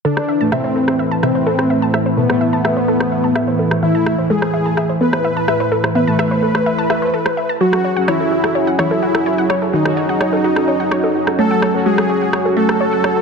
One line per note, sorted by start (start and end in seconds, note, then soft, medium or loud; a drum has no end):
0.05 0.48 D3 medium
0.05 7.57 E3 medium
0.05 0.48 D4 loud
0.05 7.57 E4 medium
0.05 0.16 A4 medium
0.05 3.79 B4 medium
0.17 0.26 C5 medium
0.17 cross-stick soft
0.28 0.34 E5 medium
0.40 2.27 A2 medium
0.40 2.27 E3 medium
0.40 2.27 A3 loud
0.40 0.46 A5 medium
0.52 1.14 C3 medium
0.52 1.14 C4 loud
0.52 0.61 E5 loud
0.52 cross-stick soft
0.64 0.69 C5 medium
0.76 0.87 A4 medium
0.88 0.97 C5 medium
0.88 cross-stick soft
0.99 1.11 E5 medium
1.11 1.20 A5 medium
1.23 2.08 C3 medium
1.23 2.08 C4 loud
1.23 1.28 E5 medium
1.23 cross-stick soft
1.35 1.40 C5 medium
1.47 1.58 A4 loud
1.59 1.67 C5 medium
1.59 cross-stick soft
1.70 1.76 E5 medium
1.82 1.88 A5 medium
1.94 2.03 E5 medium
1.94 cross-stick soft
2.06 2.11 C5 medium
2.17 3.74 B2 medium
2.17 3.74 B3 loud
2.17 2.29 A4 medium
2.29 4.16 A2 medium
2.29 4.16 E3 medium
2.29 4.16 A3 loud
2.29 2.38 C5 medium
2.29 cross-stick soft
2.41 2.52 E5 medium
2.53 2.62 A5 medium
2.65 2.70 E5 medium
2.65 cross-stick soft
2.77 2.82 C5 medium
2.88 3.00 A4 loud
3.00 3.09 C5 medium
3.00 cross-stick soft
3.12 3.17 E5 medium
3.24 3.29 A5 medium
3.35 3.45 E5 medium
3.35 cross-stick soft
3.48 3.53 C5 medium
3.59 3.71 A4 medium
3.71 3.80 C5 medium
3.71 cross-stick soft
3.83 4.26 E3 medium
3.83 4.26 E4 loud
3.83 3.94 E5 medium
3.95 4.04 A5 medium
4.06 4.12 E5 loud
4.06 cross-stick medium
4.18 6.05 A2 medium
4.18 6.05 E3 medium
4.18 4.24 C5 medium
4.30 4.92 G#3 medium
4.30 4.92 G#4 loud
4.30 4.42 A4 loud
4.42 4.51 C5 medium
4.42 cross-stick soft
4.54 4.59 E5 medium
4.66 4.71 A5 medium
4.77 4.87 E5 medium
4.77 cross-stick soft
4.89 4.95 C5 medium
5.01 5.86 B3 medium
5.01 5.12 A4 medium
5.01 5.86 B4 loud
5.13 5.22 C5 medium
5.13 cross-stick soft
5.24 5.36 E5 medium
5.37 5.45 A5 medium
5.48 5.54 E5 loud
5.48 cross-stick soft
5.60 5.66 C5 medium
5.72 5.83 A4 medium
5.84 5.93 C5 medium
5.84 cross-stick soft
5.95 7.51 B3 medium
5.95 7.51 B4 loud
5.95 6.01 E5 medium
6.07 6.88 A2 medium
6.07 6.88 E3 medium
6.07 6.88 A3 medium
6.07 6.13 A5 medium
6.19 6.28 E5 loud
6.19 cross-stick soft
6.31 6.36 C5 medium
6.43 6.54 A4 medium
6.55 6.64 C5 medium
6.55 cross-stick soft
6.66 6.78 E5 medium
6.78 6.87 A5 medium
6.90 6.99 A2 medium
6.90 6.99 E3 medium
6.90 6.99 A3 medium
6.90 6.95 E5 medium
6.90 cross-stick soft
7.02 7.10 A2 medium
7.02 7.10 E3 medium
7.02 7.10 A3 medium
7.02 7.07 C5 medium
7.14 7.25 A4 medium
7.26 7.34 C5 medium
7.26 cross-stick medium
7.37 7.43 E5 medium
7.49 7.55 A5 medium
7.61 8.04 F#3 medium
7.61 13.22 F#3 medium
7.61 13.22 C#4 medium
7.61 8.04 F#4 loud
7.61 7.72 F#4 loud
7.61 11.35 G#4 medium
7.73 7.82 A4 medium
7.73 cross-stick medium
7.84 7.90 C#5 medium
7.96 9.83 F#3 medium
7.96 9.83 C#4 medium
7.96 9.83 F#4 loud
7.96 8.02 F#5 medium
8.08 8.70 E3 medium
8.08 8.70 E4 medium
8.08 8.17 C#5 loud
8.08 cross-stick soft
8.20 8.25 A4 medium
8.32 8.43 F#4 medium
8.44 8.53 A4 medium
8.44 cross-stick soft
8.55 8.67 C#5 medium
8.67 8.76 F#5 medium
8.79 9.64 E3 medium
8.79 9.64 E4 loud
8.79 8.84 C#5 medium
8.79 cross-stick soft
8.91 8.96 A4 medium
9.03 9.14 F#4 medium
9.15 9.23 A4 medium
9.15 cross-stick medium
9.26 9.32 C#5 medium
9.38 9.44 F#5 medium
9.50 9.59 C#5 medium
9.50 cross-stick soft
9.62 9.67 A4 medium
9.73 11.30 D#3 medium
9.73 11.29 D#4 loud
9.73 9.85 F#4 medium
9.85 11.71 F#3 medium
9.85 11.72 C#4 medium
9.85 11.72 F#4 medium
9.85 9.94 A4 medium
9.85 cross-stick medium
9.97 10.08 C#5 medium
10.09 10.18 F#5 medium
10.21 10.26 C#5 medium
10.21 cross-stick medium
10.33 10.38 A4 medium
10.44 10.56 F#4 loud
10.56 10.65 A4 medium
10.56 cross-stick soft
10.68 10.73 C#5 medium
10.80 10.85 F#5 medium
10.91 11.01 C#5 loud
10.91 cross-stick soft
11.04 11.09 A4 medium
11.15 11.27 F#4 medium
11.27 11.36 A4 medium
11.27 cross-stick soft
11.38 11.82 A3 medium
11.38 13.22 F#4 medium
11.38 11.82 A4 loud
11.38 11.50 C#5 medium
11.51 11.60 F#5 medium
11.62 11.68 C#5 loud
11.62 cross-stick medium
11.74 13.22 F#3 medium
11.74 13.22 C#4 medium
11.74 13.22 F#4 loud
11.74 11.80 A4 medium
11.86 12.48 G#3 medium
11.86 11.97 F#4 loud
11.86 12.48 G#4 medium
11.98 12.07 A4 medium
11.98 cross-stick medium
12.10 12.15 C#5 medium
12.22 12.27 F#5 medium
12.33 12.42 C#5 loud
12.33 cross-stick soft
12.45 12.51 A4 medium
12.57 13.22 A3 medium
12.57 12.68 F#4 medium
12.57 13.22 A4 loud
12.69 12.78 A4 medium
12.69 cross-stick soft
12.80 12.92 C#5 medium
12.93 13.01 F#5 medium
13.04 13.10 C#5 medium
13.04 cross-stick medium
13.16 13.22 A4 medium